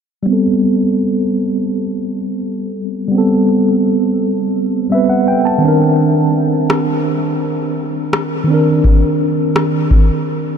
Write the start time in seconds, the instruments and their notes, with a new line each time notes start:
0.23 tine electric piano G3 B3
0.29 tine electric piano C4 A4
3.08 tine electric piano G3 B3
3.15 tine electric piano C4 A4
4.90 tine electric piano G3 B3 C4 E5
4.95 tine electric piano B4
5.09 tine electric piano F#5
5.28 tine electric piano G5
5.45 tine electric piano A5
5.58 tine electric piano D#3 C4
5.65 tine electric piano D4 A#4
6.70 cross-stick
8.13 cross-stick
8.44 tine electric piano D#3 C4
8.51 tine electric piano D4 A#4
8.84 kick
9.56 cross-stick
9.91 kick